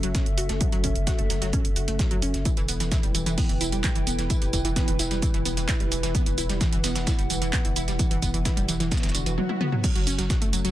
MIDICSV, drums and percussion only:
0, 0, Header, 1, 2, 480
1, 0, Start_track
1, 0, Tempo, 461538
1, 633, Time_signature, 4, 2, 24, 8
1, 11138, End_track
2, 0, Start_track
2, 0, Title_t, "Drums"
2, 33, Note_on_c, 9, 42, 55
2, 137, Note_off_c, 9, 42, 0
2, 152, Note_on_c, 9, 42, 85
2, 153, Note_on_c, 9, 36, 127
2, 154, Note_on_c, 9, 38, 120
2, 154, Note_on_c, 9, 82, 90
2, 256, Note_off_c, 9, 42, 0
2, 257, Note_off_c, 9, 36, 0
2, 258, Note_off_c, 9, 38, 0
2, 258, Note_off_c, 9, 82, 0
2, 273, Note_on_c, 9, 42, 53
2, 377, Note_off_c, 9, 42, 0
2, 391, Note_on_c, 9, 46, 100
2, 394, Note_on_c, 9, 82, 67
2, 495, Note_off_c, 9, 46, 0
2, 498, Note_off_c, 9, 82, 0
2, 513, Note_on_c, 9, 42, 54
2, 515, Note_on_c, 9, 38, 58
2, 617, Note_off_c, 9, 42, 0
2, 619, Note_off_c, 9, 38, 0
2, 631, Note_on_c, 9, 42, 75
2, 633, Note_on_c, 9, 36, 126
2, 634, Note_on_c, 9, 82, 85
2, 735, Note_off_c, 9, 42, 0
2, 737, Note_off_c, 9, 36, 0
2, 738, Note_off_c, 9, 82, 0
2, 753, Note_on_c, 9, 42, 51
2, 754, Note_off_c, 9, 42, 0
2, 754, Note_on_c, 9, 42, 44
2, 858, Note_off_c, 9, 42, 0
2, 871, Note_on_c, 9, 46, 112
2, 873, Note_on_c, 9, 36, 65
2, 873, Note_on_c, 9, 82, 69
2, 975, Note_off_c, 9, 46, 0
2, 977, Note_off_c, 9, 36, 0
2, 977, Note_off_c, 9, 82, 0
2, 993, Note_on_c, 9, 42, 50
2, 1097, Note_off_c, 9, 42, 0
2, 1113, Note_on_c, 9, 36, 121
2, 1113, Note_on_c, 9, 38, 115
2, 1113, Note_on_c, 9, 42, 78
2, 1113, Note_on_c, 9, 82, 89
2, 1217, Note_off_c, 9, 36, 0
2, 1217, Note_off_c, 9, 38, 0
2, 1217, Note_off_c, 9, 42, 0
2, 1217, Note_off_c, 9, 82, 0
2, 1233, Note_on_c, 9, 42, 52
2, 1337, Note_off_c, 9, 42, 0
2, 1353, Note_on_c, 9, 38, 56
2, 1353, Note_on_c, 9, 46, 97
2, 1353, Note_on_c, 9, 82, 70
2, 1457, Note_off_c, 9, 38, 0
2, 1457, Note_off_c, 9, 46, 0
2, 1457, Note_off_c, 9, 82, 0
2, 1474, Note_on_c, 9, 38, 53
2, 1474, Note_on_c, 9, 42, 53
2, 1578, Note_off_c, 9, 38, 0
2, 1578, Note_off_c, 9, 42, 0
2, 1592, Note_on_c, 9, 82, 91
2, 1593, Note_on_c, 9, 36, 123
2, 1593, Note_on_c, 9, 42, 81
2, 1696, Note_off_c, 9, 82, 0
2, 1697, Note_off_c, 9, 36, 0
2, 1697, Note_off_c, 9, 42, 0
2, 1714, Note_on_c, 9, 42, 52
2, 1818, Note_off_c, 9, 42, 0
2, 1832, Note_on_c, 9, 46, 104
2, 1832, Note_on_c, 9, 82, 67
2, 1936, Note_off_c, 9, 46, 0
2, 1936, Note_off_c, 9, 82, 0
2, 1954, Note_on_c, 9, 42, 52
2, 2058, Note_off_c, 9, 42, 0
2, 2072, Note_on_c, 9, 38, 119
2, 2072, Note_on_c, 9, 82, 90
2, 2073, Note_on_c, 9, 36, 124
2, 2073, Note_on_c, 9, 42, 80
2, 2176, Note_off_c, 9, 38, 0
2, 2176, Note_off_c, 9, 82, 0
2, 2177, Note_off_c, 9, 36, 0
2, 2177, Note_off_c, 9, 42, 0
2, 2194, Note_on_c, 9, 42, 52
2, 2298, Note_off_c, 9, 42, 0
2, 2312, Note_on_c, 9, 46, 98
2, 2312, Note_on_c, 9, 82, 67
2, 2416, Note_off_c, 9, 46, 0
2, 2416, Note_off_c, 9, 82, 0
2, 2433, Note_on_c, 9, 38, 42
2, 2434, Note_on_c, 9, 42, 53
2, 2537, Note_off_c, 9, 38, 0
2, 2538, Note_off_c, 9, 42, 0
2, 2552, Note_on_c, 9, 42, 75
2, 2552, Note_on_c, 9, 54, 44
2, 2552, Note_on_c, 9, 82, 89
2, 2553, Note_on_c, 9, 36, 118
2, 2656, Note_off_c, 9, 42, 0
2, 2656, Note_off_c, 9, 54, 0
2, 2656, Note_off_c, 9, 82, 0
2, 2657, Note_off_c, 9, 36, 0
2, 2673, Note_on_c, 9, 42, 51
2, 2673, Note_on_c, 9, 54, 22
2, 2777, Note_off_c, 9, 42, 0
2, 2777, Note_off_c, 9, 54, 0
2, 2792, Note_on_c, 9, 82, 68
2, 2793, Note_on_c, 9, 46, 109
2, 2793, Note_on_c, 9, 54, 78
2, 2896, Note_off_c, 9, 82, 0
2, 2897, Note_off_c, 9, 46, 0
2, 2897, Note_off_c, 9, 54, 0
2, 2914, Note_on_c, 9, 38, 57
2, 2914, Note_on_c, 9, 42, 50
2, 2914, Note_on_c, 9, 54, 34
2, 3018, Note_off_c, 9, 38, 0
2, 3018, Note_off_c, 9, 42, 0
2, 3018, Note_off_c, 9, 54, 0
2, 3032, Note_on_c, 9, 38, 113
2, 3032, Note_on_c, 9, 42, 75
2, 3032, Note_on_c, 9, 54, 43
2, 3032, Note_on_c, 9, 82, 86
2, 3033, Note_on_c, 9, 36, 116
2, 3136, Note_off_c, 9, 38, 0
2, 3136, Note_off_c, 9, 42, 0
2, 3136, Note_off_c, 9, 54, 0
2, 3136, Note_off_c, 9, 82, 0
2, 3137, Note_off_c, 9, 36, 0
2, 3154, Note_on_c, 9, 42, 50
2, 3154, Note_on_c, 9, 54, 23
2, 3258, Note_off_c, 9, 42, 0
2, 3258, Note_off_c, 9, 54, 0
2, 3273, Note_on_c, 9, 46, 95
2, 3273, Note_on_c, 9, 54, 76
2, 3273, Note_on_c, 9, 82, 67
2, 3377, Note_off_c, 9, 46, 0
2, 3377, Note_off_c, 9, 54, 0
2, 3377, Note_off_c, 9, 82, 0
2, 3394, Note_on_c, 9, 42, 50
2, 3394, Note_on_c, 9, 54, 34
2, 3498, Note_off_c, 9, 42, 0
2, 3498, Note_off_c, 9, 54, 0
2, 3512, Note_on_c, 9, 42, 77
2, 3512, Note_on_c, 9, 54, 46
2, 3513, Note_on_c, 9, 36, 115
2, 3513, Note_on_c, 9, 46, 81
2, 3616, Note_off_c, 9, 42, 0
2, 3616, Note_off_c, 9, 54, 0
2, 3617, Note_off_c, 9, 36, 0
2, 3617, Note_off_c, 9, 46, 0
2, 3633, Note_on_c, 9, 42, 51
2, 3633, Note_on_c, 9, 54, 22
2, 3737, Note_off_c, 9, 42, 0
2, 3737, Note_off_c, 9, 54, 0
2, 3752, Note_on_c, 9, 46, 105
2, 3752, Note_on_c, 9, 54, 75
2, 3753, Note_on_c, 9, 82, 70
2, 3856, Note_off_c, 9, 46, 0
2, 3856, Note_off_c, 9, 54, 0
2, 3857, Note_off_c, 9, 82, 0
2, 3873, Note_on_c, 9, 42, 50
2, 3873, Note_on_c, 9, 54, 33
2, 3977, Note_off_c, 9, 42, 0
2, 3977, Note_off_c, 9, 54, 0
2, 3992, Note_on_c, 9, 38, 122
2, 3992, Note_on_c, 9, 82, 89
2, 3993, Note_on_c, 9, 36, 123
2, 3993, Note_on_c, 9, 39, 118
2, 3993, Note_on_c, 9, 42, 79
2, 3993, Note_on_c, 9, 54, 46
2, 4096, Note_off_c, 9, 38, 0
2, 4096, Note_off_c, 9, 82, 0
2, 4097, Note_off_c, 9, 36, 0
2, 4097, Note_off_c, 9, 39, 0
2, 4097, Note_off_c, 9, 42, 0
2, 4097, Note_off_c, 9, 54, 0
2, 4113, Note_on_c, 9, 42, 52
2, 4113, Note_on_c, 9, 54, 22
2, 4217, Note_off_c, 9, 42, 0
2, 4217, Note_off_c, 9, 54, 0
2, 4232, Note_on_c, 9, 46, 90
2, 4232, Note_on_c, 9, 54, 76
2, 4232, Note_on_c, 9, 82, 68
2, 4336, Note_off_c, 9, 46, 0
2, 4336, Note_off_c, 9, 54, 0
2, 4336, Note_off_c, 9, 82, 0
2, 4353, Note_on_c, 9, 38, 56
2, 4353, Note_on_c, 9, 42, 49
2, 4353, Note_on_c, 9, 54, 33
2, 4457, Note_off_c, 9, 38, 0
2, 4457, Note_off_c, 9, 42, 0
2, 4457, Note_off_c, 9, 54, 0
2, 4472, Note_on_c, 9, 42, 71
2, 4472, Note_on_c, 9, 54, 43
2, 4473, Note_on_c, 9, 36, 115
2, 4473, Note_on_c, 9, 82, 89
2, 4576, Note_off_c, 9, 42, 0
2, 4576, Note_off_c, 9, 54, 0
2, 4577, Note_off_c, 9, 36, 0
2, 4577, Note_off_c, 9, 82, 0
2, 4593, Note_on_c, 9, 42, 50
2, 4593, Note_on_c, 9, 54, 22
2, 4594, Note_off_c, 9, 42, 0
2, 4594, Note_on_c, 9, 42, 45
2, 4697, Note_off_c, 9, 54, 0
2, 4698, Note_off_c, 9, 42, 0
2, 4713, Note_on_c, 9, 36, 58
2, 4713, Note_on_c, 9, 46, 107
2, 4713, Note_on_c, 9, 54, 80
2, 4713, Note_on_c, 9, 82, 67
2, 4817, Note_off_c, 9, 36, 0
2, 4817, Note_off_c, 9, 46, 0
2, 4817, Note_off_c, 9, 54, 0
2, 4817, Note_off_c, 9, 82, 0
2, 4834, Note_on_c, 9, 42, 52
2, 4834, Note_on_c, 9, 54, 34
2, 4938, Note_off_c, 9, 42, 0
2, 4938, Note_off_c, 9, 54, 0
2, 4952, Note_on_c, 9, 42, 75
2, 4952, Note_on_c, 9, 54, 45
2, 4953, Note_on_c, 9, 36, 113
2, 4954, Note_on_c, 9, 38, 118
2, 4954, Note_on_c, 9, 82, 90
2, 5056, Note_off_c, 9, 42, 0
2, 5056, Note_off_c, 9, 54, 0
2, 5057, Note_off_c, 9, 36, 0
2, 5058, Note_off_c, 9, 38, 0
2, 5058, Note_off_c, 9, 82, 0
2, 5073, Note_on_c, 9, 42, 51
2, 5073, Note_on_c, 9, 54, 23
2, 5177, Note_off_c, 9, 42, 0
2, 5177, Note_off_c, 9, 54, 0
2, 5193, Note_on_c, 9, 38, 55
2, 5193, Note_on_c, 9, 46, 89
2, 5193, Note_on_c, 9, 54, 80
2, 5193, Note_on_c, 9, 82, 69
2, 5297, Note_off_c, 9, 38, 0
2, 5297, Note_off_c, 9, 46, 0
2, 5297, Note_off_c, 9, 54, 0
2, 5297, Note_off_c, 9, 82, 0
2, 5314, Note_on_c, 9, 38, 53
2, 5314, Note_on_c, 9, 42, 50
2, 5314, Note_on_c, 9, 54, 33
2, 5418, Note_off_c, 9, 38, 0
2, 5418, Note_off_c, 9, 42, 0
2, 5418, Note_off_c, 9, 54, 0
2, 5433, Note_on_c, 9, 36, 112
2, 5433, Note_on_c, 9, 42, 78
2, 5433, Note_on_c, 9, 54, 46
2, 5433, Note_on_c, 9, 82, 93
2, 5537, Note_off_c, 9, 36, 0
2, 5537, Note_off_c, 9, 42, 0
2, 5537, Note_off_c, 9, 54, 0
2, 5537, Note_off_c, 9, 82, 0
2, 5554, Note_on_c, 9, 42, 51
2, 5554, Note_on_c, 9, 54, 22
2, 5658, Note_off_c, 9, 42, 0
2, 5658, Note_off_c, 9, 54, 0
2, 5673, Note_on_c, 9, 46, 101
2, 5673, Note_on_c, 9, 54, 77
2, 5673, Note_on_c, 9, 82, 70
2, 5777, Note_off_c, 9, 46, 0
2, 5777, Note_off_c, 9, 54, 0
2, 5777, Note_off_c, 9, 82, 0
2, 5794, Note_on_c, 9, 42, 49
2, 5794, Note_on_c, 9, 54, 33
2, 5795, Note_off_c, 9, 42, 0
2, 5795, Note_on_c, 9, 42, 46
2, 5898, Note_off_c, 9, 54, 0
2, 5899, Note_off_c, 9, 42, 0
2, 5913, Note_on_c, 9, 36, 116
2, 5913, Note_on_c, 9, 38, 121
2, 5913, Note_on_c, 9, 39, 123
2, 5913, Note_on_c, 9, 42, 76
2, 5913, Note_on_c, 9, 54, 44
2, 5913, Note_on_c, 9, 82, 89
2, 6017, Note_off_c, 9, 36, 0
2, 6017, Note_off_c, 9, 38, 0
2, 6017, Note_off_c, 9, 39, 0
2, 6017, Note_off_c, 9, 42, 0
2, 6017, Note_off_c, 9, 54, 0
2, 6017, Note_off_c, 9, 82, 0
2, 6034, Note_on_c, 9, 42, 49
2, 6034, Note_on_c, 9, 54, 22
2, 6138, Note_off_c, 9, 42, 0
2, 6138, Note_off_c, 9, 54, 0
2, 6153, Note_on_c, 9, 82, 69
2, 6154, Note_on_c, 9, 46, 90
2, 6154, Note_on_c, 9, 54, 79
2, 6257, Note_off_c, 9, 82, 0
2, 6258, Note_off_c, 9, 46, 0
2, 6258, Note_off_c, 9, 54, 0
2, 6275, Note_on_c, 9, 38, 42
2, 6275, Note_on_c, 9, 42, 51
2, 6275, Note_on_c, 9, 54, 32
2, 6379, Note_off_c, 9, 38, 0
2, 6379, Note_off_c, 9, 42, 0
2, 6379, Note_off_c, 9, 54, 0
2, 6393, Note_on_c, 9, 36, 114
2, 6393, Note_on_c, 9, 42, 77
2, 6393, Note_on_c, 9, 54, 41
2, 6394, Note_on_c, 9, 82, 91
2, 6497, Note_off_c, 9, 36, 0
2, 6497, Note_off_c, 9, 42, 0
2, 6497, Note_off_c, 9, 54, 0
2, 6498, Note_off_c, 9, 82, 0
2, 6514, Note_on_c, 9, 42, 50
2, 6514, Note_on_c, 9, 54, 22
2, 6618, Note_off_c, 9, 42, 0
2, 6618, Note_off_c, 9, 54, 0
2, 6633, Note_on_c, 9, 46, 98
2, 6633, Note_on_c, 9, 54, 78
2, 6633, Note_on_c, 9, 82, 67
2, 6737, Note_off_c, 9, 46, 0
2, 6737, Note_off_c, 9, 54, 0
2, 6737, Note_off_c, 9, 82, 0
2, 6754, Note_on_c, 9, 38, 59
2, 6755, Note_on_c, 9, 42, 50
2, 6755, Note_on_c, 9, 54, 34
2, 6858, Note_off_c, 9, 38, 0
2, 6859, Note_off_c, 9, 42, 0
2, 6859, Note_off_c, 9, 54, 0
2, 6872, Note_on_c, 9, 38, 117
2, 6872, Note_on_c, 9, 82, 88
2, 6873, Note_on_c, 9, 36, 110
2, 6873, Note_on_c, 9, 42, 77
2, 6873, Note_on_c, 9, 54, 43
2, 6976, Note_off_c, 9, 38, 0
2, 6976, Note_off_c, 9, 82, 0
2, 6977, Note_off_c, 9, 36, 0
2, 6977, Note_off_c, 9, 42, 0
2, 6977, Note_off_c, 9, 54, 0
2, 6994, Note_on_c, 9, 42, 54
2, 6994, Note_on_c, 9, 54, 21
2, 7098, Note_off_c, 9, 42, 0
2, 7098, Note_off_c, 9, 54, 0
2, 7112, Note_on_c, 9, 38, 105
2, 7112, Note_on_c, 9, 82, 81
2, 7113, Note_on_c, 9, 46, 92
2, 7113, Note_on_c, 9, 54, 79
2, 7216, Note_off_c, 9, 38, 0
2, 7216, Note_off_c, 9, 82, 0
2, 7217, Note_off_c, 9, 46, 0
2, 7217, Note_off_c, 9, 54, 0
2, 7233, Note_on_c, 9, 38, 104
2, 7233, Note_on_c, 9, 82, 81
2, 7234, Note_on_c, 9, 42, 52
2, 7234, Note_on_c, 9, 54, 33
2, 7337, Note_off_c, 9, 38, 0
2, 7337, Note_off_c, 9, 82, 0
2, 7338, Note_off_c, 9, 42, 0
2, 7338, Note_off_c, 9, 54, 0
2, 7352, Note_on_c, 9, 38, 105
2, 7352, Note_on_c, 9, 82, 82
2, 7353, Note_on_c, 9, 36, 110
2, 7353, Note_on_c, 9, 42, 82
2, 7353, Note_on_c, 9, 54, 46
2, 7456, Note_off_c, 9, 38, 0
2, 7456, Note_off_c, 9, 82, 0
2, 7457, Note_off_c, 9, 36, 0
2, 7457, Note_off_c, 9, 42, 0
2, 7457, Note_off_c, 9, 54, 0
2, 7474, Note_on_c, 9, 42, 50
2, 7474, Note_on_c, 9, 54, 22
2, 7578, Note_off_c, 9, 42, 0
2, 7578, Note_off_c, 9, 54, 0
2, 7592, Note_on_c, 9, 82, 69
2, 7593, Note_on_c, 9, 46, 99
2, 7593, Note_on_c, 9, 54, 75
2, 7696, Note_off_c, 9, 82, 0
2, 7697, Note_off_c, 9, 46, 0
2, 7697, Note_off_c, 9, 54, 0
2, 7714, Note_on_c, 9, 42, 53
2, 7714, Note_on_c, 9, 54, 33
2, 7818, Note_off_c, 9, 42, 0
2, 7818, Note_off_c, 9, 54, 0
2, 7831, Note_on_c, 9, 38, 118
2, 7831, Note_on_c, 9, 82, 90
2, 7832, Note_on_c, 9, 39, 126
2, 7832, Note_on_c, 9, 42, 80
2, 7832, Note_on_c, 9, 54, 45
2, 7833, Note_on_c, 9, 36, 117
2, 7935, Note_off_c, 9, 38, 0
2, 7935, Note_off_c, 9, 82, 0
2, 7936, Note_off_c, 9, 39, 0
2, 7936, Note_off_c, 9, 42, 0
2, 7936, Note_off_c, 9, 54, 0
2, 7937, Note_off_c, 9, 36, 0
2, 7954, Note_on_c, 9, 42, 52
2, 7954, Note_on_c, 9, 54, 21
2, 8058, Note_off_c, 9, 42, 0
2, 8058, Note_off_c, 9, 54, 0
2, 8072, Note_on_c, 9, 46, 89
2, 8072, Note_on_c, 9, 54, 77
2, 8072, Note_on_c, 9, 82, 69
2, 8176, Note_off_c, 9, 46, 0
2, 8176, Note_off_c, 9, 54, 0
2, 8176, Note_off_c, 9, 82, 0
2, 8193, Note_on_c, 9, 38, 57
2, 8194, Note_on_c, 9, 42, 52
2, 8194, Note_on_c, 9, 54, 32
2, 8297, Note_off_c, 9, 38, 0
2, 8298, Note_off_c, 9, 42, 0
2, 8298, Note_off_c, 9, 54, 0
2, 8312, Note_on_c, 9, 82, 89
2, 8313, Note_on_c, 9, 36, 115
2, 8313, Note_on_c, 9, 42, 81
2, 8313, Note_on_c, 9, 54, 41
2, 8416, Note_off_c, 9, 82, 0
2, 8417, Note_off_c, 9, 36, 0
2, 8417, Note_off_c, 9, 42, 0
2, 8417, Note_off_c, 9, 54, 0
2, 8433, Note_on_c, 9, 42, 44
2, 8434, Note_off_c, 9, 42, 0
2, 8434, Note_on_c, 9, 42, 53
2, 8434, Note_on_c, 9, 54, 21
2, 8538, Note_off_c, 9, 42, 0
2, 8538, Note_off_c, 9, 54, 0
2, 8552, Note_on_c, 9, 36, 60
2, 8552, Note_on_c, 9, 82, 69
2, 8554, Note_on_c, 9, 46, 105
2, 8554, Note_on_c, 9, 54, 76
2, 8656, Note_off_c, 9, 36, 0
2, 8656, Note_off_c, 9, 82, 0
2, 8658, Note_off_c, 9, 46, 0
2, 8658, Note_off_c, 9, 54, 0
2, 8674, Note_on_c, 9, 42, 54
2, 8674, Note_on_c, 9, 54, 32
2, 8778, Note_off_c, 9, 42, 0
2, 8778, Note_off_c, 9, 54, 0
2, 8791, Note_on_c, 9, 38, 118
2, 8791, Note_on_c, 9, 82, 89
2, 8792, Note_on_c, 9, 36, 116
2, 8793, Note_on_c, 9, 42, 78
2, 8793, Note_on_c, 9, 54, 42
2, 8895, Note_off_c, 9, 38, 0
2, 8895, Note_off_c, 9, 82, 0
2, 8896, Note_off_c, 9, 36, 0
2, 8897, Note_off_c, 9, 42, 0
2, 8897, Note_off_c, 9, 54, 0
2, 8914, Note_on_c, 9, 42, 54
2, 8914, Note_on_c, 9, 54, 22
2, 9018, Note_off_c, 9, 42, 0
2, 9018, Note_off_c, 9, 54, 0
2, 9032, Note_on_c, 9, 38, 58
2, 9032, Note_on_c, 9, 82, 68
2, 9033, Note_on_c, 9, 46, 93
2, 9033, Note_on_c, 9, 54, 76
2, 9136, Note_off_c, 9, 38, 0
2, 9136, Note_off_c, 9, 82, 0
2, 9137, Note_off_c, 9, 46, 0
2, 9137, Note_off_c, 9, 54, 0
2, 9153, Note_on_c, 9, 38, 53
2, 9154, Note_on_c, 9, 42, 53
2, 9154, Note_on_c, 9, 54, 31
2, 9257, Note_off_c, 9, 38, 0
2, 9258, Note_off_c, 9, 42, 0
2, 9258, Note_off_c, 9, 54, 0
2, 9272, Note_on_c, 9, 38, 89
2, 9272, Note_on_c, 9, 82, 70
2, 9273, Note_on_c, 9, 36, 114
2, 9273, Note_on_c, 9, 42, 83
2, 9273, Note_on_c, 9, 54, 43
2, 9333, Note_off_c, 9, 38, 0
2, 9333, Note_off_c, 9, 82, 0
2, 9333, Note_on_c, 9, 38, 89
2, 9333, Note_on_c, 9, 82, 67
2, 9377, Note_off_c, 9, 36, 0
2, 9377, Note_off_c, 9, 42, 0
2, 9377, Note_off_c, 9, 54, 0
2, 9393, Note_off_c, 9, 38, 0
2, 9393, Note_off_c, 9, 82, 0
2, 9393, Note_on_c, 9, 38, 93
2, 9393, Note_on_c, 9, 82, 67
2, 9394, Note_on_c, 9, 42, 53
2, 9394, Note_on_c, 9, 54, 21
2, 9453, Note_off_c, 9, 38, 0
2, 9453, Note_off_c, 9, 82, 0
2, 9453, Note_on_c, 9, 38, 87
2, 9453, Note_on_c, 9, 82, 68
2, 9498, Note_off_c, 9, 42, 0
2, 9498, Note_off_c, 9, 54, 0
2, 9512, Note_on_c, 9, 46, 102
2, 9512, Note_on_c, 9, 54, 73
2, 9513, Note_off_c, 9, 82, 0
2, 9513, Note_on_c, 9, 82, 67
2, 9557, Note_off_c, 9, 38, 0
2, 9616, Note_off_c, 9, 46, 0
2, 9616, Note_off_c, 9, 54, 0
2, 9617, Note_off_c, 9, 82, 0
2, 9634, Note_on_c, 9, 42, 45
2, 9634, Note_on_c, 9, 54, 31
2, 9738, Note_off_c, 9, 42, 0
2, 9738, Note_off_c, 9, 54, 0
2, 9752, Note_on_c, 9, 48, 61
2, 9856, Note_off_c, 9, 48, 0
2, 9873, Note_on_c, 9, 48, 64
2, 9977, Note_off_c, 9, 48, 0
2, 9991, Note_on_c, 9, 47, 91
2, 10095, Note_off_c, 9, 47, 0
2, 10113, Note_on_c, 9, 45, 84
2, 10217, Note_off_c, 9, 45, 0
2, 10232, Note_on_c, 9, 42, 81
2, 10232, Note_on_c, 9, 49, 100
2, 10232, Note_on_c, 9, 54, 39
2, 10233, Note_on_c, 9, 36, 123
2, 10233, Note_on_c, 9, 82, 92
2, 10336, Note_off_c, 9, 42, 0
2, 10336, Note_off_c, 9, 49, 0
2, 10336, Note_off_c, 9, 54, 0
2, 10337, Note_off_c, 9, 36, 0
2, 10337, Note_off_c, 9, 82, 0
2, 10354, Note_on_c, 9, 42, 55
2, 10354, Note_on_c, 9, 54, 20
2, 10458, Note_off_c, 9, 42, 0
2, 10458, Note_off_c, 9, 54, 0
2, 10472, Note_on_c, 9, 46, 105
2, 10472, Note_on_c, 9, 54, 71
2, 10474, Note_on_c, 9, 82, 66
2, 10576, Note_off_c, 9, 46, 0
2, 10576, Note_off_c, 9, 54, 0
2, 10578, Note_off_c, 9, 82, 0
2, 10593, Note_on_c, 9, 42, 54
2, 10593, Note_on_c, 9, 54, 30
2, 10594, Note_on_c, 9, 38, 57
2, 10697, Note_off_c, 9, 42, 0
2, 10697, Note_off_c, 9, 54, 0
2, 10698, Note_off_c, 9, 38, 0
2, 10712, Note_on_c, 9, 36, 120
2, 10712, Note_on_c, 9, 42, 86
2, 10712, Note_on_c, 9, 54, 39
2, 10713, Note_on_c, 9, 38, 117
2, 10713, Note_on_c, 9, 82, 89
2, 10816, Note_off_c, 9, 36, 0
2, 10816, Note_off_c, 9, 42, 0
2, 10816, Note_off_c, 9, 54, 0
2, 10817, Note_off_c, 9, 38, 0
2, 10817, Note_off_c, 9, 82, 0
2, 10833, Note_on_c, 9, 42, 55
2, 10833, Note_on_c, 9, 54, 21
2, 10937, Note_off_c, 9, 42, 0
2, 10937, Note_off_c, 9, 54, 0
2, 10952, Note_on_c, 9, 46, 96
2, 10952, Note_on_c, 9, 54, 73
2, 10953, Note_on_c, 9, 82, 71
2, 11056, Note_off_c, 9, 46, 0
2, 11056, Note_off_c, 9, 54, 0
2, 11057, Note_off_c, 9, 82, 0
2, 11073, Note_on_c, 9, 42, 58
2, 11073, Note_on_c, 9, 54, 31
2, 11138, Note_off_c, 9, 42, 0
2, 11138, Note_off_c, 9, 54, 0
2, 11138, End_track
0, 0, End_of_file